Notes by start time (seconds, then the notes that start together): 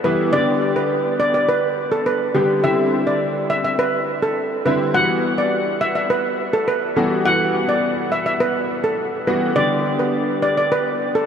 Already playing: E3 G3 B3 F#4
0.04 E3 G3 B3 E4 B4
0.33 D3 G3 B3 G4 D5
0.76 B4
1.20 D5
1.34 D5
1.49 B4
1.92 A4
2.06 B4
2.34 D3 G3 B3 G4
2.63 D3 G3 C4 E4 E5
3.07 D5
3.50 E5
3.65 E5
3.79 B4
4.22 A4
4.65 D3 G3 C4 E4 B4
4.94 E3 G3 B3 F#4 F#5
5.38 D5
5.81 E5
5.95 E5
6.10 B4
6.53 A4
6.68 B4
6.96 E3 G3 B3 F#4 A4
7.25 E3 G3 B3 F#4 F#5
7.69 D5
8.12 E5
8.26 E5
8.40 B4
8.84 A4
9.27 E3 G3 B3 F#4 B4
9.56 D3 G3 B3 G4 D5
9.99 B4
10.42 D5
10.57 D5
10.72 B4
11.15 A4